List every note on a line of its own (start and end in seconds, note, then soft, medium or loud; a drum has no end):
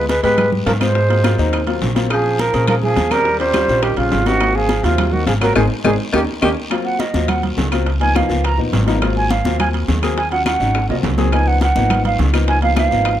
0.00 0.18 D2 loud
0.00 0.10 G#3 medium
0.00 0.11 B3 medium
0.00 0.11 F4 medium
0.08 0.22 G#3 medium
0.08 0.23 B4 medium
0.08 high bongo medium
0.08 high conga medium
0.08 high timbale medium
0.08 short guiro medium
0.23 0.64 G#2 medium
0.23 0.50 G#3 medium
0.23 0.64 G#3 medium
0.23 0.64 B3 medium
0.23 0.64 G4 medium
0.23 0.50 B4 medium
0.23 high conga soft
0.23 high timbale medium
0.23 short guiro medium
0.38 high bongo medium
0.38 high conga soft
0.38 low conga medium
0.38 high timbale medium
0.38 long guiro medium
0.38 claves medium
0.52 high bongo soft
0.52 high conga soft
0.52 low conga medium
0.66 1.33 G#2 medium
0.66 0.73 F3 medium
0.66 0.72 A#4 medium
0.66 high bongo medium
0.66 low bongo medium
0.66 high conga medium
0.66 high timbale medium
0.66 low timbale medium
0.66 short guiro medium
0.80 0.95 G#3 medium
0.80 1.65 G#3 medium
0.80 0.95 B3 medium
0.80 0.96 F4 medium
0.80 1.65 C5 medium
0.80 high bongo soft
0.80 high conga medium
0.80 high timbale medium
0.80 short guiro medium
0.80 claves medium
0.95 high bongo medium
0.95 high conga soft
0.95 long guiro medium
1.08 1.19 F#3 medium
1.08 1.20 A#3 medium
1.08 1.20 C4 medium
1.08 1.20 F4 medium
1.08 high conga soft
1.08 high timbale medium
1.23 1.34 F#3 loud
1.23 1.34 A#3 medium
1.23 1.34 C4 medium
1.23 1.34 F4 medium
1.23 high bongo medium
1.23 high conga medium
1.23 high timbale medium
1.23 short guiro medium
1.23 claves medium
1.38 1.79 D#2 medium
1.38 1.58 F#3 medium
1.38 1.59 A#3 medium
1.38 1.59 C4 medium
1.38 1.59 D#4 loud
1.38 high bongo soft
1.38 high conga soft
1.38 short guiro medium
1.53 high bongo medium
1.53 high conga soft
1.53 high timbale medium
1.53 long guiro medium
1.53 claves medium
1.66 1.87 F#3 medium
1.66 1.87 A#3 medium
1.66 1.88 C4 medium
1.66 1.87 F4 medium
1.66 high bongo soft
1.66 high conga soft
1.66 high timbale medium
1.81 2.48 A#1 medium
1.81 high bongo medium
1.81 low bongo medium
1.81 high conga soft
1.81 low timbale medium
1.81 short guiro medium
1.95 2.06 F#3 medium
1.95 2.06 A#3 medium
1.95 2.06 C4 medium
1.95 2.06 F4 medium
1.95 high conga medium
1.95 high timbale medium
1.95 short guiro medium
2.09 2.41 F3 medium
2.09 2.40 C4 medium
2.09 2.40 C#4 medium
2.09 2.41 G#4 medium
2.09 2.42 G#4 medium
2.09 high bongo medium
2.09 high conga soft
2.09 high timbale medium
2.09 long guiro medium
2.09 claves medium
2.25 high bongo soft
2.25 high conga soft
2.39 2.69 F3 medium
2.39 2.68 A#4 medium
2.39 high bongo medium
2.39 high conga medium
2.39 high timbale medium
2.39 short guiro medium
2.52 2.94 A#2 medium
2.52 2.93 C4 medium
2.52 2.94 C#4 medium
2.52 2.94 G#4 medium
2.52 high conga soft
2.52 high timbale medium
2.52 short guiro medium
2.68 2.75 F3 medium
2.68 2.75 A#4 medium
2.68 high bongo medium
2.68 high conga soft
2.68 low conga medium
2.68 high timbale medium
2.68 long guiro medium
2.68 claves medium
2.82 3.13 F3 medium
2.82 3.13 G#4 medium
2.82 high bongo soft
2.82 high conga soft
2.82 low conga medium
2.96 3.63 D#2 medium
2.96 high bongo medium
2.96 low bongo medium
2.96 high conga medium
2.96 high timbale medium
2.96 short guiro medium
3.10 3.40 G3 medium
3.10 3.25 C4 medium
3.10 3.26 C#4 medium
3.10 3.26 G#4 medium
3.10 3.39 A#4 loud
3.10 high bongo soft
3.10 high conga medium
3.10 high timbale medium
3.10 short guiro medium
3.10 claves medium
3.25 high bongo medium
3.25 high conga soft
3.25 long guiro medium
3.39 3.50 G3 medium
3.39 3.85 G3 medium
3.39 3.50 C4 medium
3.39 3.50 C#4 medium
3.39 3.50 F4 medium
3.39 3.84 C5 loud
3.39 high conga soft
3.39 high timbale medium
3.54 3.64 G3 medium
3.54 3.64 C4 medium
3.54 3.65 C#4 medium
3.54 3.65 F4 medium
3.54 high bongo medium
3.54 high conga medium
3.54 high timbale medium
3.54 short guiro medium
3.54 claves medium
3.68 3.95 A#1 medium
3.68 3.89 G3 medium
3.68 3.89 C4 medium
3.68 3.89 C#4 medium
3.68 3.90 F4 medium
3.68 high bongo soft
3.68 high conga soft
3.68 short guiro medium
3.83 3.99 D#3 medium
3.83 3.99 G4 medium
3.83 high bongo medium
3.83 high conga soft
3.83 high timbale medium
3.83 long guiro medium
3.83 claves medium
3.97 4.10 A#1 medium
3.97 4.28 C#3 medium
3.97 4.17 G3 medium
3.97 4.18 C4 medium
3.97 4.18 C#4 medium
3.97 4.28 F4 medium
3.97 4.18 F4 medium
3.97 high bongo soft
3.97 high conga soft
3.97 high timbale medium
4.12 4.78 G#1 medium
4.12 high bongo medium
4.12 low bongo medium
4.12 high conga soft
4.12 low timbale medium
4.12 short guiro medium
4.26 4.56 D#3 medium
4.26 4.36 G3 medium
4.26 4.37 C4 medium
4.26 4.37 C#4 medium
4.26 4.37 F4 medium
4.26 4.57 F#4 loud
4.26 high bongo soft
4.26 high conga medium
4.26 high timbale medium
4.26 short guiro medium
4.40 4.71 F#3 medium
4.40 4.71 A#3 medium
4.40 4.71 C4 medium
4.40 4.72 F4 medium
4.40 high bongo medium
4.40 high conga soft
4.40 high timbale medium
4.40 long guiro medium
4.40 claves medium
4.55 4.85 F3 medium
4.55 4.86 G#4 medium
4.55 high bongo soft
4.55 high conga soft
4.69 high bongo medium
4.69 high conga medium
4.69 high timbale medium
4.69 short guiro medium
4.83 5.24 D#2 medium
4.83 5.14 C3 medium
4.83 5.24 F#3 medium
4.83 5.24 A#3 medium
4.83 5.24 C4 medium
4.83 5.14 F4 medium
4.83 5.25 F4 medium
4.83 high conga soft
4.83 high timbale medium
4.83 short guiro medium
4.98 high bongo medium
4.98 high conga soft
4.98 low conga medium
4.98 high timbale medium
4.98 long guiro medium
4.98 claves medium
5.13 5.26 D#3 medium
5.13 5.27 F#4 medium
5.13 high bongo soft
5.13 high conga soft
5.13 low conga medium
5.26 5.54 G#1 medium
5.26 5.33 F3 medium
5.26 5.33 G#4 medium
5.26 high bongo medium
5.26 low bongo medium
5.26 high conga medium
5.26 high timbale medium
5.26 short guiro medium
5.40 5.55 F#3 medium
5.40 5.55 A#3 medium
5.40 5.54 C4 medium
5.40 5.56 F4 medium
5.40 5.55 A#4 loud
5.40 high bongo soft
5.40 high conga medium
5.40 high timbale medium
5.40 short guiro medium
5.40 claves medium
5.55 5.66 G#1 medium
5.55 5.62 D#3 medium
5.55 5.65 G#3 medium
5.55 5.65 C4 medium
5.55 5.65 D#4 medium
5.55 5.65 G#4 medium
5.55 high bongo loud
5.55 high conga loud
5.55 high timbale loud
5.55 long guiro medium
5.55 claves medium
5.84 5.95 G#1 medium
5.84 5.91 D#3 medium
5.84 5.94 G#3 medium
5.84 5.94 C4 medium
5.84 5.94 D#4 medium
5.84 5.94 G#4 medium
5.84 high bongo loud
5.84 high conga medium
5.84 high timbale loud
5.84 long guiro loud
5.84 claves medium
6.12 6.24 D#2 medium
6.12 6.20 D#3 medium
6.12 6.22 A#3 medium
6.12 6.22 C#4 medium
6.12 6.22 D#4 medium
6.12 6.23 G4 medium
6.12 high bongo medium
6.12 high conga medium
6.12 high timbale medium
6.12 long guiro medium
6.12 claves medium
6.41 6.53 D#2 loud
6.41 6.49 D#3 medium
6.41 6.51 A#3 medium
6.41 6.51 C#4 medium
6.41 6.51 D#4 medium
6.41 6.51 G4 medium
6.41 high bongo medium
6.41 high conga medium
6.41 high timbale medium
6.41 long guiro medium
6.41 claves medium
6.70 7.01 F#3 medium
6.70 7.01 A#3 medium
6.70 7.01 C4 medium
6.70 7.01 F4 loud
6.70 high bongo medium
6.70 high conga soft
6.70 high timbale loud
6.70 long guiro medium
6.70 claves medium
6.85 7.01 F#5 medium
6.85 high bongo soft
6.85 high conga soft
6.99 7.30 D#5 medium
6.99 high bongo medium
6.99 high conga medium
6.99 high timbale medium
6.99 low timbale medium
6.99 short guiro medium
7.13 7.54 D#2 medium
7.13 7.54 F#3 medium
7.13 7.54 A#3 medium
7.13 7.55 C4 medium
7.13 7.55 F4 medium
7.13 high bongo soft
7.13 high conga medium
7.13 short guiro medium
7.28 7.43 F#5 medium
7.28 high bongo medium
7.28 high conga soft
7.28 low conga medium
7.28 high timbale medium
7.28 long guiro medium
7.28 claves medium
7.43 high bongo soft
7.43 high conga soft
7.43 low conga medium
7.43 high timbale medium
7.57 8.24 C#2 medium
7.57 high bongo soft
7.57 low bongo medium
7.57 high conga medium
7.57 low timbale medium
7.57 short guiro medium
7.71 7.86 F#3 medium
7.71 7.86 A#3 medium
7.71 7.87 C4 medium
7.71 7.87 F4 medium
7.71 high conga soft
7.71 high timbale medium
7.71 short guiro medium
7.71 claves medium
7.86 high bongo medium
7.86 high conga soft
7.86 high timbale medium
7.86 long guiro medium
8.00 8.11 F3 medium
8.00 8.11 A#3 medium
8.00 8.11 B3 medium
8.00 8.11 D#4 medium
8.00 8.18 G#5 loud
8.00 high bongo soft
8.00 high conga soft
8.00 high timbale medium
8.14 8.25 F3 medium
8.14 8.25 A#3 medium
8.14 8.25 B3 medium
8.14 8.25 D#4 medium
8.14 8.46 F5 medium
8.14 high bongo medium
8.14 high conga medium
8.14 high timbale medium
8.14 low timbale medium
8.14 short guiro medium
8.14 claves medium
8.29 8.56 C#2 medium
8.29 8.49 F3 medium
8.29 8.50 A#3 medium
8.29 8.50 B3 medium
8.29 8.50 F4 medium
8.29 high bongo soft
8.29 high conga soft
8.29 short guiro medium
8.44 8.59 A#5 medium
8.44 high bongo medium
8.44 high conga soft
8.44 high timbale medium
8.44 long guiro medium
8.44 claves medium
8.58 8.71 A#1 medium
8.58 8.78 F3 medium
8.58 8.79 A#3 medium
8.58 8.79 B3 medium
8.58 8.79 D#4 medium
8.58 high bongo soft
8.58 high conga soft
8.72 9.39 G#1 medium
8.72 high bongo soft
8.72 low bongo medium
8.72 high conga medium
8.72 high timbale medium
8.72 low timbale medium
8.72 short guiro medium
8.87 8.97 F3 medium
8.87 8.97 A#3 medium
8.87 8.97 B3 medium
8.87 8.98 D#4 loud
8.87 high conga medium
8.87 high timbale medium
8.87 short guiro medium
9.02 9.32 F#3 medium
9.02 9.32 A#3 medium
9.02 9.32 C4 medium
9.02 9.32 F4 loud
9.02 high bongo medium
9.02 high conga soft
9.02 high timbale medium
9.02 long guiro medium
9.02 claves medium
9.16 9.32 G#5 medium
9.16 high bongo soft
9.16 high conga soft
9.30 9.60 F5 medium
9.30 high bongo medium
9.30 high conga medium
9.30 high timbale medium
9.30 low timbale medium
9.30 short guiro medium
9.45 9.85 D#2 medium
9.45 9.85 F#3 medium
9.45 9.86 A#3 medium
9.45 9.86 C4 medium
9.45 9.86 F4 medium
9.45 high bongo soft
9.45 high conga medium
9.45 short guiro medium
9.60 9.69 G#5 medium
9.60 high bongo medium
9.60 high conga soft
9.60 low conga medium
9.60 high timbale medium
9.60 long guiro medium
9.60 claves medium
9.74 high bongo soft
9.74 high conga soft
9.74 high timbale medium
9.88 10.55 D#2 medium
9.88 high bongo soft
9.88 low bongo medium
9.88 high conga medium
9.88 low timbale medium
9.88 short guiro medium
10.02 10.17 F#3 medium
10.02 10.17 A#3 medium
10.02 10.17 C4 medium
10.02 10.18 G#4 medium
10.02 high conga soft
10.02 high timbale medium
10.02 short guiro medium
10.02 claves medium
10.17 10.31 G#5 medium
10.17 high bongo medium
10.17 high conga soft
10.17 high timbale medium
10.17 long guiro medium
10.31 10.42 F#3 medium
10.31 10.42 C#4 medium
10.31 10.42 F4 medium
10.31 10.45 F#5 medium
10.31 high bongo soft
10.31 high conga soft
10.31 high timbale medium
10.45 10.56 F#3 medium
10.45 10.56 C#4 medium
10.45 10.56 F4 medium
10.45 10.87 F#5 medium
10.45 high bongo medium
10.45 high conga medium
10.45 high timbale medium
10.45 low timbale medium
10.45 short guiro medium
10.45 claves medium
10.60 10.87 G#1 medium
10.60 10.75 F#3 medium
10.60 10.75 C#4 medium
10.60 10.75 D#4 medium
10.60 high bongo soft
10.60 high conga soft
10.60 short guiro medium
10.74 high bongo medium
10.74 high conga soft
10.74 high timbale medium
10.74 long guiro medium
10.74 claves medium
10.89 11.02 C2 medium
10.89 11.09 F#3 medium
10.89 11.10 A#3 medium
10.89 11.10 C4 medium
10.89 11.10 F4 medium
10.89 10.97 D#5 soft
10.89 high bongo soft
10.89 high conga soft
10.89 high timbale medium
11.03 11.70 C#2 medium
11.03 high bongo soft
11.03 low bongo medium
11.03 high conga medium
11.03 low timbale medium
11.03 short guiro medium
11.17 11.28 F#3 medium
11.17 11.28 A#3 medium
11.17 11.28 C4 medium
11.17 11.28 G#4 loud
11.17 high conga medium
11.17 low timbale medium
11.17 short guiro medium
11.32 11.63 F3 medium
11.32 11.63 A#3 medium
11.32 11.63 B3 medium
11.32 11.63 D#4 medium
11.32 11.49 G#5 medium
11.32 high bongo medium
11.32 high conga soft
11.32 high timbale medium
11.32 long guiro medium
11.32 claves medium
11.47 11.62 F#5 loud
11.47 high bongo soft
11.47 high conga soft
11.61 12.03 F#5 medium
11.61 high bongo medium
11.61 high conga medium
11.61 high timbale medium
11.61 low timbale medium
11.61 short guiro medium
11.76 12.16 G#1 medium
11.76 12.16 F3 medium
11.76 12.16 A#3 medium
11.76 12.17 B3 medium
11.76 12.17 D#4 medium
11.76 high bongo soft
11.76 high conga medium
11.76 short guiro medium
11.90 high bongo medium
11.90 high conga soft
11.90 low conga medium
11.90 high timbale medium
11.90 long guiro medium
11.90 claves medium
12.05 12.19 F5 medium
12.05 high bongo soft
12.05 high conga soft
12.05 low conga medium
12.05 high timbale medium
12.18 12.86 C#2 medium
12.18 high bongo soft
12.18 low bongo medium
12.18 high conga medium
12.18 low timbale medium
12.18 short guiro medium
12.33 12.54 F3 medium
12.33 12.54 A#3 medium
12.33 12.54 B3 medium
12.33 12.54 D#4 loud
12.33 high timbale loud
12.33 short guiro medium
12.33 claves medium
12.48 12.62 G#5 medium
12.48 high bongo medium
12.48 high conga soft
12.48 high timbale medium
12.48 long guiro medium
12.61 12.72 F3 medium
12.61 12.72 A#3 medium
12.61 12.73 B3 medium
12.61 12.73 D#4 medium
12.61 12.76 F5 medium
12.61 high bongo soft
12.61 high conga soft
12.61 high timbale medium
12.75 12.86 F3 medium
12.75 12.87 A#3 medium
12.75 12.87 B3 medium
12.75 12.87 D#4 medium
12.75 13.18 F5 medium
12.75 high bongo medium
12.75 high conga medium
12.75 high timbale medium
12.75 low timbale medium
12.75 short guiro medium
12.75 claves medium
12.90 13.20 G#1 medium
12.90 13.11 F3 medium
12.90 13.11 A#3 medium
12.90 13.11 B3 medium
12.90 13.12 D#4 medium
12.90 high bongo soft
12.90 high conga soft
12.90 short guiro medium
13.05 high bongo medium
13.05 high conga soft
13.05 high timbale medium
13.05 long guiro medium
13.05 claves medium